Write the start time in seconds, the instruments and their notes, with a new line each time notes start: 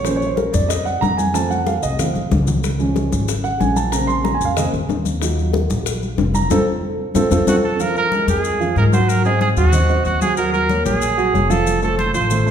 Already playing: upright bass A#1
0.04 grand piano F3 A#3 C#4 C5, high bongo, high conga, maracas
0.16 grand piano C#5
0.21 high bongo, high conga, maracas
0.26 grand piano C5
0.36 grand piano A#4, high bongo, high conga, maracas
0.52 upright bass F2, grand piano D5, high conga, maracas
0.69 grand piano D#5, high bongo, high conga, maracas
0.85 grand piano F#5, high bongo, high conga, maracas
1.01 upright bass F2, grand piano A#5, high bongo, low bongo, high conga, maracas
1.17 grand piano G#5, high bongo, high conga, maracas
1.33 grand piano F3 A3 C4 A5, high bongo, high conga, maracas
1.50 grand piano F#5, high bongo, high conga, maracas
1.66 grand piano F5, high bongo, high conga, maracas
1.83 upright bass C2, grand piano D#5, maracas
1.99 grand piano F3 A3 C4 F5, high bongo, high conga, low conga, maracas
2.15 upright bass C2, high bongo, high conga, maracas
2.31 upright bass C#2, high bongo, low bongo, high conga, maracas
2.47 high bongo, low conga, maracas
2.64 high bongo, high conga, maracas
2.79 grand piano F3 G#3 C#4, high bongo, high conga, maracas
2.96 high bongo, high conga, maracas
3.12 upright bass G#1, high conga, maracas
3.28 high bongo, high conga, maracas
3.44 grand piano F#5, high bongo, high conga, maracas
3.60 upright bass A#1, grand piano F3 G#3 C#4 G#5, high bongo, low bongo, high conga, maracas
3.76 grand piano A5, high bongo, high conga, maracas
3.91 grand piano C#3 A#3 C4 A#5, high bongo, high conga, maracas
4.07 grand piano C6, high bongo, high conga, maracas
4.24 grand piano A#5, high bongo, high conga, maracas
4.34 grand piano G#5
4.41 upright bass F2, maracas
4.45 grand piano F5
4.56 grand piano C#3 A#3 C4 D#5, high bongo, high conga, low conga, maracas
4.73 upright bass F2, high bongo, high conga, low conga, maracas
4.89 upright bass D#2, high bongo, low bongo, high conga, maracas
5.05 high bongo, high conga, maracas
5.21 grand piano F#3 D#4 F4, high bongo, high conga, maracas
5.38 high bongo, high conga, maracas
5.53 high bongo, high conga, maracas
5.70 upright bass A#1, high conga, maracas
5.86 high bongo, high conga, maracas
6.02 high bongo, high conga, maracas
6.18 upright bass F1, high bongo, low bongo, high conga, maracas
6.34 grand piano A#5, high bongo, high conga, maracas
6.50 upright bass F2, grand piano C4 F4 A4, low bongo, high conga, maracas
7.14 upright bass F2, grand piano C4 F4 A4, low bongo, high conga, maracas
7.30 upright bass F2, grand piano C4 F4 A4, low bongo, high conga, maracas
7.47 upright bass F2, grand piano C4 F4 A4, trumpet F#4, low bongo, high conga, maracas
7.64 trumpet A4
7.79 grand piano F3 F4 F5, trumpet A#4, high conga, maracas
7.96 trumpet A#4, high conga, maracas
8.12 grand piano G#3 G#4 A#4, high conga, maracas
8.27 upright bass F2, grand piano G#3 G#4 A#4, trumpet G#4, high conga, maracas
8.44 high conga, maracas
8.60 grand piano F3 F4 F5, high conga, maracas
8.76 upright bass G#2, grand piano G#3 G#4 A#4, trumpet A#4, high conga, maracas
8.92 grand piano F#3 F#4 F#5, trumpet C5, high conga, maracas
9.09 trumpet A#4, high conga, maracas
9.25 grand piano C4 C5 D#5, trumpet G#4, high conga, maracas
9.41 trumpet G#4, high conga, maracas
9.57 upright bass D#2, grand piano F#3 F#4 F#5, trumpet F#4, maracas
9.73 grand piano C4 C5 D#5, high conga, low conga, maracas
9.89 grand piano C4 C5 D#5, high conga, maracas
10.05 upright bass D#2, trumpet F#4, high conga, maracas
10.21 grand piano F#3 F#4 F#5, trumpet G#4, high conga, maracas
10.37 grand piano F#3 F#4 F#5, trumpet A#4, high conga, maracas
10.53 trumpet A#4, high conga, maracas
10.69 grand piano A#3 A#4 C#5, high conga, maracas
10.85 upright bass A#1, grand piano A#3 A#4 C#5, trumpet G#4, high conga, maracas
11.02 high conga, maracas
11.17 grand piano F#3 F#4 F#5, high conga, maracas
11.33 upright bass F1, grand piano A#3 A#4 C#5, high conga, maracas
11.50 grand piano F3 F4 F5, trumpet A4, high conga, maracas
11.67 high conga, maracas
11.82 grand piano A3 A4 C5, trumpet A4, high conga, maracas
11.98 trumpet C5, high conga, maracas
12.14 upright bass A1, grand piano F3 F4 F5, trumpet C5, maracas
12.30 grand piano A3 A4 C5, high conga, low conga, maracas
12.46 grand piano A3 A4 C5, high conga, maracas